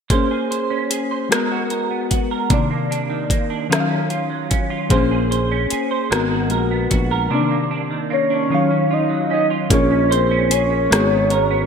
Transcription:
0.10 1.31 A#3 medium
0.10 1.31 G#4 soft
0.10 0.50 C5 medium
0.10 1.32 C5 soft
0.10 kick medium
0.10 closed hi-hat soft
0.14 1.32 C#4 medium
0.31 0.89 G#4 soft
0.51 1.10 C5 medium
0.51 closed hi-hat soft
0.70 1.39 C#4 soft
0.90 1.38 G#4 soft
0.90 closed hi-hat medium
1.11 1.31 C5 soft
1.29 2.50 G#3 medium
1.29 2.59 G#3 medium
1.29 2.52 B3 medium
1.29 2.51 F#4 soft
1.29 1.71 A#4 soft
1.29 2.51 A#4 soft
1.29 cross-stick medium
1.29 closed hi-hat medium
1.52 2.09 F#4 soft
1.70 2.31 A#4 medium
1.70 closed hi-hat soft
1.91 2.59 B3 soft
2.10 2.50 F#4 soft
2.10 kick medium
2.10 closed hi-hat medium
2.31 4.91 A#4 medium
2.50 3.70 C3 medium
2.50 3.71 A#3 soft
2.50 2.90 D4 medium
2.50 2.58 D4 soft
2.50 kick loud
2.50 closed hi-hat medium
2.54 3.72 D5 medium
2.59 3.68 D#3 soft
2.70 3.30 A#3 soft
2.91 3.49 D4 medium
2.91 closed hi-hat soft
3.10 3.69 D#3 medium
3.30 3.90 A#3 soft
3.30 kick medium
3.30 closed hi-hat medium
3.50 3.70 D4 soft
3.69 4.90 D#3 medium
3.69 4.98 D#3 medium
3.69 4.91 F#3 medium
3.69 4.91 C#4 medium
3.69 4.10 F4 medium
3.69 cross-stick medium
3.69 closed hi-hat medium
3.74 3.79 E5 medium
3.80 4.95 F5 medium
3.90 4.49 C#4 soft
4.10 4.69 F4 medium
4.10 closed hi-hat soft
4.30 4.90 F#3 soft
4.50 4.98 C#4 soft
4.50 kick medium
4.50 closed hi-hat medium
4.70 4.98 F4 medium
4.89 5.67 A#1 medium
4.89 6.10 A#3 medium
4.89 6.11 G#4 medium
4.89 5.30 C5 medium
4.89 6.11 C5 medium
4.89 kick loud
4.89 closed hi-hat medium
4.94 6.12 C#4 medium
5.11 5.70 G#4 soft
5.31 5.90 C5 soft
5.31 closed hi-hat soft
5.51 6.19 C#4 medium
5.71 6.19 G#4 soft
5.71 muted fretless electric bass stroke soft
5.71 closed hi-hat medium
5.91 6.11 C5 soft
6.11 6.52 G#1 medium
6.11 7.39 G#3 medium
6.11 7.31 G#3 medium
6.11 7.31 F#4 medium
6.11 6.51 A#4 medium
6.11 7.32 A#4 medium
6.11 cross-stick medium
6.11 closed hi-hat medium
6.15 7.33 B3 medium
6.31 6.89 F#4 soft
6.50 6.87 A#1 medium
6.50 7.11 A#4 soft
6.50 closed hi-hat soft
6.71 7.39 B3 soft
6.90 7.28 A#1 medium
6.90 7.30 F#4 soft
6.90 kick medium
6.90 closed hi-hat medium
7.11 10.10 A#4 medium
7.30 8.50 C3 medium
7.30 8.51 A#3 medium
7.30 7.70 D4 medium
7.30 8.53 D4 medium
7.39 8.49 D#3 soft
7.51 8.10 A#3 soft
7.71 8.29 D4 medium
7.91 8.49 D#3 medium
8.10 8.70 A#3 medium
8.10 8.95 C#5 loud
8.30 8.50 D4 medium
8.50 9.70 D#3 medium
8.50 9.79 D#3 medium
8.50 9.72 F#3 medium
8.50 9.71 C#4 soft
8.50 8.90 F4 medium
8.54 9.72 F5 medium
8.71 9.29 C#4 soft
8.91 9.49 F4 medium
8.91 9.32 D#5 medium
9.10 9.70 F#3 medium
9.30 9.78 C#4 medium
9.30 9.47 D#5 loud
9.50 9.78 F4 medium
9.70 10.87 A#1 medium
9.70 10.90 A#3 medium
9.70 10.91 G#4 soft
9.70 10.91 A#4 soft
9.70 10.15 C#5 loud
9.70 kick loud
9.70 closed hi-hat medium
9.74 10.92 C#4 medium
9.90 10.30 C#4 soft
10.11 10.99 C5 medium
10.11 10.54 C5 loud
10.11 closed hi-hat soft
10.31 10.69 C#4 medium
10.51 10.99 G#4 soft
10.51 11.66 C#5 loud
10.51 closed hi-hat medium
10.70 10.98 C#4 soft
10.90 11.66 G#1 medium
10.90 11.66 G#3 medium
10.90 11.66 F#4 soft
10.90 11.66 G#4 soft
10.90 cross-stick medium
10.90 closed hi-hat medium
10.95 11.66 B3 medium
11.10 11.49 B3 soft
11.30 11.66 A#4 medium
11.30 closed hi-hat soft
11.51 11.66 B3 medium

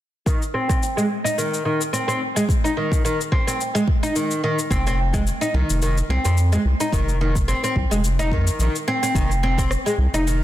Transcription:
0.26 0.41 D#3 medium
0.26 kick loud
0.26 cabasa soft
0.42 cabasa soft
0.54 0.68 C4 medium
0.69 0.81 C4 medium
0.69 kick medium
0.69 cabasa medium
0.83 cabasa soft
0.97 1.04 G#3 medium
0.97 cabasa soft
1.24 1.36 D#4 medium
1.24 cabasa medium
1.38 1.64 D#3 medium
1.38 cabasa soft
1.54 cabasa soft
1.65 1.80 D#3 medium
1.81 cabasa medium
1.93 2.07 C4 medium
1.93 cabasa soft
2.08 2.20 C4 medium
2.08 cabasa soft
2.36 2.43 G#3 medium
2.36 cabasa medium
2.49 kick loud
2.49 cabasa soft
2.64 2.75 D#4 medium
2.64 cabasa soft
2.77 3.03 D#3 medium
2.92 kick medium
2.92 cabasa medium
3.05 3.19 D#3 medium
3.05 cabasa soft
3.21 cabasa soft
3.32 3.46 C4 medium
3.32 kick medium
3.47 3.59 C4 medium
3.47 cabasa medium
3.61 cabasa medium
3.75 3.82 G#3 medium
3.75 cabasa soft
3.88 kick loud
4.03 4.14 D#4 medium
4.03 cabasa medium
4.16 4.42 D#3 medium
4.16 cabasa medium
4.31 cabasa soft
4.44 4.58 D#3 medium
4.59 cabasa medium
4.71 5.32 F1 medium
4.71 4.84 C4 medium
4.71 kick loud
4.71 cabasa medium
4.87 4.98 C4 loud
4.87 cabasa soft
5.14 5.21 G#3 loud
5.14 kick medium
5.14 cabasa medium
5.27 cabasa soft
5.41 5.53 D#4 medium
5.41 cabasa soft
5.54 5.63 C2 medium
5.54 5.81 D#3 medium
5.70 6.02 F1 medium
5.70 cabasa medium
5.82 5.97 D#3 medium
5.82 cabasa medium
5.98 cabasa soft
6.09 6.19 C2 medium
6.09 6.24 C4 medium
6.25 6.57 F2 medium
6.25 6.37 C4 medium
6.25 cabasa medium
6.38 cabasa medium
6.52 6.60 G#3 medium
6.52 cabasa soft
6.65 6.74 C2 medium
6.80 6.92 D#4 medium
6.80 cabasa medium
6.92 7.54 F1 medium
6.92 7.20 D#3 medium
6.92 kick loud
6.92 cabasa medium
7.09 cabasa soft
7.21 7.35 D#3 medium
7.36 kick loud
7.36 cabasa medium
7.48 7.62 C4 medium
7.48 cabasa soft
7.64 7.76 C4 medium
7.64 cabasa soft
7.76 7.85 C2 loud
7.76 kick medium
7.91 8.33 F1 medium
7.91 7.99 G#3 medium
7.91 cabasa medium
8.04 cabasa medium
8.19 8.31 D#4 medium
8.19 cabasa soft
8.31 8.50 F2 medium
8.31 8.59 D#3 medium
8.31 kick medium
8.47 cabasa medium
8.59 8.69 A#1 loud
8.59 8.75 D#3 medium
8.59 cabasa medium
8.76 cabasa soft
8.88 9.01 C4 loud
9.03 9.15 C4 medium
9.03 cabasa medium
9.15 9.76 F1 medium
9.15 9.30 D#3 medium
9.15 kick loud
9.15 cabasa medium
9.31 cabasa soft
9.43 9.57 C4 medium
9.58 9.70 C4 medium
9.58 kick loud
9.58 cabasa medium
9.71 cross-stick medium
9.71 cabasa soft
9.86 9.93 G#3 medium
9.86 cabasa soft
9.98 10.08 C2 loud
10.13 10.44 F1 medium
10.13 10.25 D#4 medium
10.13 cabasa medium
10.27 10.44 D#3 medium
10.27 cabasa soft

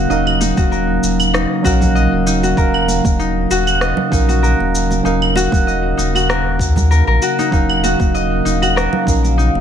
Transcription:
0.00 9.61 C#3 medium
0.00 0.08 F#3 medium
0.00 7.52 F#3 medium
0.00 9.61 A#3 medium
0.00 0.09 C#4 medium
0.00 0.10 D#4 medium
0.00 0.40 D#4 medium
0.00 9.61 D#4 medium
0.00 0.57 F#4 loud
0.00 0.12 A#4 medium
0.00 0.71 A#4 medium
0.00 0.11 F5 medium
0.08 0.52 D#1 loud
0.08 1.60 F#3 medium
0.08 1.61 C#4 medium
0.08 1.61 D#4 medium
0.08 1.88 D#5 medium
0.08 1.62 F5 medium
0.08 shaker soft
0.12 1.63 A#4 medium
0.27 claves medium
0.40 1.33 D#4 medium
0.40 muted conga medium
0.40 shaker medium
0.57 0.98 D#1 loud
0.57 1.64 F#4 medium
0.57 kick loud
0.57 high conga medium
0.57 low conga medium
0.57 shaker soft
0.71 2.57 A#4 medium
0.71 shaker soft
1.03 1.45 D#1 medium
1.03 shaker medium
1.20 claves medium
1.20 shaker soft
1.33 2.26 D#4 medium
1.33 cross-stick medium
1.33 shaker soft
1.62 2.07 A#1 medium
1.62 2.53 F#3 loud
1.62 2.54 C#4 medium
1.62 2.54 D#4 medium
1.62 2.43 F#4 loud
1.62 2.55 F5 medium
1.62 kick loud
1.62 shaker medium
1.67 2.55 A#4 loud
1.81 kick medium
1.81 muted conga medium
1.81 low conga medium
1.81 shaker soft
1.95 3.74 D#5 medium
1.95 shaker soft
2.12 2.53 D#1 medium
2.27 3.19 D#4 medium
2.27 shaker medium
2.43 3.50 F#4 medium
2.43 muted conga medium
2.43 shaker soft
2.55 3.00 D#1 medium
2.55 4.08 F#3 medium
2.55 4.08 C#4 medium
2.55 4.09 D#4 medium
2.55 4.42 A#4 medium
2.55 4.09 F5 medium
2.55 kick loud
2.55 shaker soft
2.59 4.10 A#4 medium
2.74 claves medium
2.88 muted conga medium
2.88 shaker medium
3.04 3.46 D#1 loud
3.04 kick loud
3.04 high conga medium
3.04 shaker soft
3.19 4.12 D#4 medium
3.19 shaker soft
3.50 3.93 D#1 medium
3.50 4.28 F#4 medium
3.50 high conga soft
3.50 shaker medium
3.67 claves medium
3.67 shaker soft
3.81 5.60 D#5 medium
3.81 cross-stick medium
3.81 shaker soft
3.97 low conga loud
4.10 4.54 A#1 medium
4.10 5.01 F#3 medium
4.10 5.01 C#4 medium
4.10 5.01 D#4 medium
4.10 5.04 D#4 medium
4.10 5.03 A#4 medium
4.10 5.02 F5 medium
4.10 kick loud
4.10 shaker medium
4.28 5.35 F#4 medium
4.28 muted conga soft
4.28 shaker soft
4.43 6.29 A#4 medium
4.43 shaker soft
4.59 5.00 D#1 medium
4.59 muted conga soft
4.75 shaker medium
4.91 muted conga soft
4.91 high conga medium
4.91 shaker soft
5.03 5.47 D#1 medium
5.03 6.55 F#3 medium
5.03 6.56 C#4 medium
5.03 6.56 D#4 medium
5.03 5.97 D#4 medium
5.03 6.57 A#4 medium
5.03 6.57 F5 medium
5.03 shaker soft
5.22 claves medium
5.36 6.14 F#4 medium
5.36 muted conga medium
5.36 shaker medium
5.52 5.93 D#1 loud
5.52 kick loud
5.52 high conga medium
5.52 low conga medium
5.52 shaker soft
5.67 7.45 D#5 medium
5.67 shaker soft
5.97 6.61 D#1 medium
5.97 7.38 D#4 medium
5.97 high conga soft
5.97 shaker medium
6.14 7.22 F#4 medium
6.14 high conga soft
6.14 claves medium
6.14 shaker soft
6.29 6.90 A#4 medium
6.29 cross-stick medium
6.29 shaker soft
6.59 7.02 D#2 medium
6.59 kick loud
6.59 shaker medium
6.76 kick medium
6.76 muted conga soft
6.76 low conga medium
6.76 shaker soft
6.91 7.07 A#4 medium
6.91 shaker soft
7.07 7.19 A#1 medium
7.07 8.76 A#4 medium
7.22 7.83 F#4 medium
7.22 shaker medium
7.39 7.52 D#4 medium
7.39 muted conga soft
7.39 shaker soft
7.51 7.95 D#1 medium
7.51 9.03 F#3 medium
7.51 9.03 C#4 medium
7.51 9.04 D#4 medium
7.51 8.45 D#4 medium
7.51 9.05 A#4 medium
7.51 9.61 F5 medium
7.51 9.04 F5 medium
7.51 kick loud
7.51 shaker soft
7.69 claves medium
7.83 8.62 F#4 medium
7.83 muted conga medium
7.83 shaker medium
7.99 8.40 D#1 medium
7.99 kick loud
7.99 high conga medium
7.99 shaker soft
8.14 9.61 D#5 medium
8.14 shaker soft
8.45 8.87 D#1 medium
8.45 9.37 D#4 medium
8.45 high conga soft
8.45 shaker medium
8.62 9.61 F#4 medium
8.62 claves medium
8.62 shaker soft
8.76 9.61 A#4 medium
8.76 cross-stick medium
8.76 shaker soft
8.93 low conga medium
9.05 9.49 A#1 medium
9.05 9.61 F#3 medium
9.05 9.61 C#4 medium
9.05 9.61 D#4 medium
9.05 9.61 F5 medium
9.05 kick loud
9.05 shaker medium
9.09 9.61 A#4 medium
9.25 muted conga soft
9.25 shaker soft
9.38 9.61 D#4 medium
9.38 shaker soft
9.54 9.61 D#1 medium
9.54 muted conga soft

